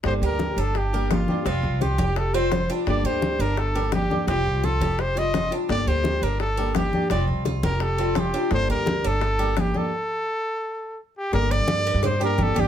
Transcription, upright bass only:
\new Staff \with { instrumentName = "Upright bass" } { \clef bass \time 4/4 \key g \minor \tempo 4 = 170 g,,8 d,4 g,,2 r8 | f,,8 c,4 f,,2 r8 | g,,8 d,4 g,,2 r8 | f,,8 c,4 f,,2 r8 |
g,,8 d,4 g,,2 r8 | f,,8 c,4 f,,2 r8 | g,,8 d,4 g,,2 r8 | r1 |
g,,8. g,4 g,4~ g,16 g,,8 g,,8 | }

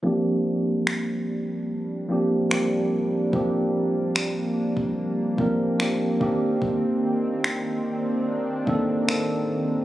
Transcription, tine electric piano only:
\new Staff \with { instrumentName = "Tine electric piano" } { \time 4/4 \key bes \major \tempo 4 = 73 <f bes c' d' g'>2 r8 <f bes c' d' g'>8 <f bes c' d' g'>4 | <f bes c' d' g'>2 r8 <f bes c' d' bes'>8 <f bes c' d' g'>8 <ees bes c' d' g'>8~ | <ees bes c' d' g'>4. r4 <ees bes c' d' a'>8 <ees bes c' d' a'>4 | }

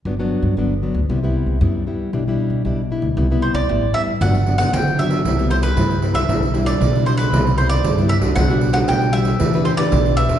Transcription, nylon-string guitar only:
\new Staff \with { instrumentName = "Nylon-string guitar" } { \time 4/4 \key g \major \tempo 4 = 116 << { <fis b d'>16 <fis b d'>8. <fis b d'>16 r16 <fis b d'>16 r16 <g b e'>16 <g b e'>8. <g b e'>8 <g b e'>8 | <g d' e'>16 <g d' e'>8. <g d' e'>16 r16 <g d' e'>16 r16 <g b e'>16 <g b e'>8. <g b e'>16 r16 <g b e'>16 r16 | <fis b d'>16 r16 <fis b d'>16 <fis b d'>8. <fis b d'>8 <g b e'>16 <g b e'>8. <g b e'>16 r16 <g b e'>16 r16 | <g d' e'>16 r16 <g d' e'>8 r16 <g d' e'>8. <g b e'>16 r16 <g b e'>8 r16 <g b e'>8 <g d' fis'>16~ |
<g d' fis'>16 <g d' fis'>8 <g d' fis'>8. <g d' fis'>16 r16 <d' g' b'>16 <d' g' b'>8 <d' g' b'>8. <d' g' b'>8 | } \\ { g,4 d4 c4 g,4 | b,4 b,4 c4 g,4 | g,4 d4 c4 g,4 | b,4 b,4 c4 g,4 |
b,4 b,4 e4 b,4 | } >> }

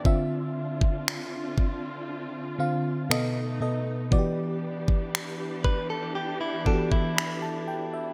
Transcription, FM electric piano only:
\new Staff \with { instrumentName = "FM electric piano" } { \time 4/4 \key d \dorian \tempo 4 = 59 << { r1 | r2. b''16 a''16 g''16 e''16 | } \\ { <d c' f' e''>4. r4 <d c' f' f''>8 <b, b a' dis''>8 <b, b a' dis''>8 | <e b fis' g' d''>4. r4 <e b fis' g' a'>4 r8 | } >> }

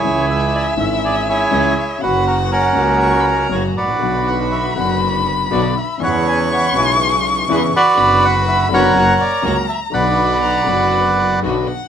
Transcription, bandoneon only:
\new Staff \with { instrumentName = "Bandoneon" } { \time 4/4 \key b \minor \tempo 4 = 122 << { cis''8 e''8 d''8 e''8 d''8 cis''4 cis''8 | b'8 ais'8 ais'2 cis''8 d''8~ | d''8 fis''8 e''8 fis''8 r4 d''8 e''8 | fis''8 gis''8 fis''8 gis''8 r4 b'8 d''8~ |
d''8 fis''8 e''8 fis''4 d''8 cis''8 e''8 | fis''2. r4 | } \\ { <e' gis'>4. r8 gis'8 <e' gis'>4. | fis'4 <cis' fis'>2 r8 <fis' b'>8~ | <fis' b'>4. r2 r8 | <b' cis''>2 r4. <fis' b'>8~ |
<fis' b'>4. <ais' cis''>2 r8 | <b' d''>2. r4 | } >> }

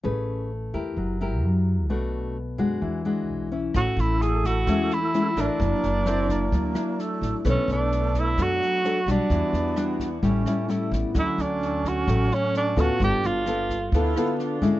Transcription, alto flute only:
\new Staff \with { instrumentName = "Alto flute" } { \time 4/4 \key a \major \tempo 4 = 130 r1 | r1 | a1 | ais4 c'8 ais4. a4 |
a2.~ a8 r8 | b2 cis'4 a8 b8 | cis'1 | d'4. r8 e'4 d'4 | }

